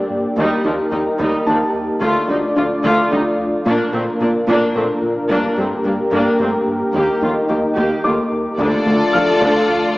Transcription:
Already playing: analog synth pad A#3 D4 G4 D5
0.10 analog synth bass G2
0.37 cello section D#2, analog synth bass D#2, synth arpeggio sound D#3, viola section G3 D#4, analog synth pad D#4 A#4
0.65 cello section D#2, analog synth bass D#2, viola section F3 D4, synth arpeggio sound D#4
0.92 cello section D#2, analog synth bass D#2, viola section G3 D#4, synth arpeggio sound D#4
1.19 cello section D#2, analog synth bass D#2, synth arpeggio sound D#3, viola section G3 D#4
1.46 cello section D#2, analog synth bass D#2, viola section F3 D4, synth arpeggio sound D#4, grand piano A5
1.74 analog synth bass D#2
2.01 analog synth bass D2, cello section D2, synth arpeggio sound D3, analog synth pad A3 D4 F4 D5, viola section A3 F4, taiko
2.29 cello section D2, analog synth bass D2, viola section G3 D#4, synth arpeggio sound D4
2.56 analog synth bass D2, cello section D2, viola section A3 F4, synth arpeggio sound D4
2.84 analog synth bass D2, cello section D2, synth arpeggio sound D3, viola section A3 F4
3.11 analog synth bass D2, cello section D2, viola section G3 D#4, synth arpeggio sound D4
3.38 analog synth bass D2
3.65 cello section A#2, analog synth bass A#2, analog synth pad A#3 A#4, synth arpeggio sound A#3, viola section A#3 D4
3.93 cello section A#2, analog synth bass A#2, viola section A3 C4, synth arpeggio sound A#4
4.20 cello section A#2, analog synth bass A#2, viola section A#3 D4, synth arpeggio sound A#4
4.48 analog synth bass A#2, cello section A#2, synth arpeggio sound A#3, viola section A#3 D4
4.75 cello section A#2, analog synth bass A#2, viola section A3 C4, synth arpeggio sound A#4
5.03 analog synth bass A#2
5.29 analog synth bass G2, cello section G2, synth arpeggio sound G3, viola section A#3 D4, analog synth pad G4, taiko
5.57 cello section G2, analog synth bass G2, viola section A3 C4, synth arpeggio sound G4
5.85 cello section G2, analog synth bass G2, viola section A#3 D4, synth arpeggio sound G4
6.12 cello section G2, analog synth bass G2, synth arpeggio sound G3, viola section A#3 D4
6.39 cello section G2, analog synth bass G2, viola section A3 C4, synth arpeggio sound G4
6.67 analog synth bass G2
6.94 cello section D#2, analog synth bass D#2, synth arpeggio sound D#3, viola section A#3 G4, analog synth pad D#4
7.21 cello section D#2, analog synth bass D#2, viola section A3 F4, synth arpeggio sound D#4
7.49 analog synth bass D#2, cello section D#2, viola section A#3 G4, synth arpeggio sound D#4
7.76 analog synth bass D#2, cello section D#2, synth arpeggio sound D#3, viola section A#3 G4
8.04 analog synth bass D#2, cello section D#2, viola section A3 F4, synth arpeggio sound D#4, grand piano D6
8.32 analog synth bass D#2
8.58 cello section D2, analog synth bass D2, double bass section D2, synth arpeggio sound D3, viola section D3 D4, analog synth pad A3 D4 F4 D5, french horn section A3 F4, violin section F4 A4 D5, taiko
8.86 cello section D2, double bass section D2, analog synth bass D3, viola section D3 D4, synth arpeggio sound A3
9.13 double bass section D2, cello section D2, analog synth bass D2, viola section D3 D4, synth arpeggio sound F3, grand piano F5 F6
9.41 cello section D2, double bass section D2, analog synth bass D2, viola section D3 D4, synth arpeggio sound D3
9.69 analog synth bass D2

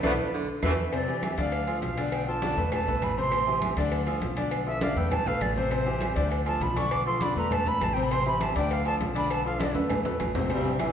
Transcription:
0.03 upright bass B1, baritone saxophone E3, trombone section F3 A3 B3, grand piano A4 B4 D5, cowbell, high conga, high timbale, claves
0.34 baritone saxophone D3
0.62 upright bass E2, baritone saxophone B2, trombone section D3 E3 A3, grand piano E4 A4 B4, cowbell, high conga, high timbale, claves
0.92 grand piano C3 C4 C5, flute D5, cowbell, high conga, low agogo
1.08 grand piano E3 E4 G4, high conga, low agogo
1.23 flute E5, cowbell, high conga, low timbale, low agogo, claves
1.37 upright bass D2, grand piano D3 D4 D5, flute F5, cowbell, high conga
1.52 cowbell, high conga, low agogo
1.67 grand piano F3 F4 A4, high conga, low agogo, claves
1.82 upright bass B1, flute F5, cowbell, high conga, low timbale
1.97 grand piano D3 D4 D5, cowbell, low agogo
2.12 flute G5, cowbell, high conga, low agogo, claves
2.27 grand piano F3 F4 A4, flute A5, high conga
2.42 grand piano D3 D4 D5, cowbell, high conga, low timbale, low agogo
2.57 upright bass E2, grand piano A3 A4 B4
2.72 flute A5, cowbell, high conga, low conga, low agogo, claves
2.87 upright bass B1, grand piano A3 A4 B4, high conga, low agogo
3.02 upright bass A1, flute B5, cowbell, high conga, low timbale, low agogo, claves
3.17 grand piano C3 C4 C5, flute C6, high conga
3.32 grand piano C3 C4 C5, cowbell, high conga, low agogo
3.47 grand piano E3 E4 G4, high conga, low agogo
3.62 cowbell, high conga, low timbale, low agogo, claves
3.76 upright bass D2, grand piano D3 D4 D5, cowbell, high conga
3.92 cowbell, high conga, low agogo
4.06 grand piano F3 F4 A4, high conga, low agogo, claves
4.21 upright bass B1, cowbell, high conga, low timbale
4.36 grand piano D3 D4 D5, cowbell, low agogo
4.51 cowbell, high conga, low agogo, claves
4.67 grand piano F3 F4 A4, flute E5, high conga
4.81 grand piano D3 D4 D5, flute F5, cowbell, high conga, high timbale, low agogo
4.96 upright bass E2, grand piano A3 A4 B4, flute G5
5.11 flute A5, cowbell, high conga, low conga, low agogo, claves
5.26 upright bass B1, grand piano A3 A4 B4, flute F5, high conga, low timbale, low agogo
5.41 upright bass A1, flute D5, cowbell, high conga, low agogo, claves
5.56 grand piano C3 C4 C5, flute C5, high conga, low timbale
5.71 grand piano C3 C4 C5, cowbell, high conga, low agogo
5.86 grand piano E3 E4 G4, high conga, low agogo
6.00 cowbell, high conga, low timbale, low agogo, claves
6.16 upright bass D2, grand piano D3 D4 D5, cowbell, high conga
6.31 cowbell, high conga, low agogo
6.46 grand piano F3 F4 A4, flute A5, high conga, low agogo, claves
6.61 upright bass B1, flute B5, cowbell, high conga, low timbale
6.76 grand piano D3 D4 D5, flute C#6, cowbell, high conga, low agogo
6.91 flute D6, cowbell, high conga, low agogo, claves
7.06 grand piano F3 F4 A4, flute C6, high conga
7.21 grand piano D3 D4 D5, flute B5, cowbell, high conga, low timbale, low agogo
7.36 upright bass E2, grand piano A3 A4 B4, flute A#5
7.51 flute A5, cowbell, high conga, low conga, low agogo, claves
7.66 grand piano A3 A4 B4, flute B5, high conga, low conga, low agogo
7.81 upright bass A1, flute A5, cowbell, high conga, low timbale, low agogo, claves
7.93 grand piano C3 C4 C5, flute G5, high conga
8.03 flute B5
8.11 grand piano C3 C4 C5, flute C6, cowbell, high conga, low agogo
8.26 grand piano E3 E4 G4, flute B5, high conga, low agogo
8.41 flute A5, cowbell, high conga, low timbale, low agogo, claves
8.56 upright bass D2, grand piano D3 D4 D5, flute G5, cowbell, high conga
8.70 flute F5, cowbell, high conga, low agogo
8.85 grand piano F3 F4 A4, flute A5, high conga, low agogo, claves
9.00 upright bass B1, cowbell, high conga, low timbale
9.15 grand piano D3 D4 D5, flute B5, cowbell, low agogo
9.30 flute A5, cowbell, high conga, low agogo, claves
9.45 grand piano F3 F4 A4, flute F5, high conga
9.60 grand piano D3 D4 D5, cowbell, high conga, high timbale, low agogo
9.75 upright bass E2, grand piano A3 A4 B4, high timbale
9.90 cowbell, high conga, low conga, high timbale, low agogo, claves
10.05 grand piano A3 A4 B4, high conga, low timbale, low agogo
10.19 upright bass A1, cowbell, high conga, low timbale, low agogo, claves
10.35 grand piano C3 C4 C5, low conga, low timbale
10.49 trombone section G2 G3, grand piano C3 C4 C5, cowbell, high conga, low agogo
10.65 high conga, low agogo
10.79 grand piano E3 E4 E5, trombone section E3 E4, cowbell, high conga, low timbale, low agogo, claves

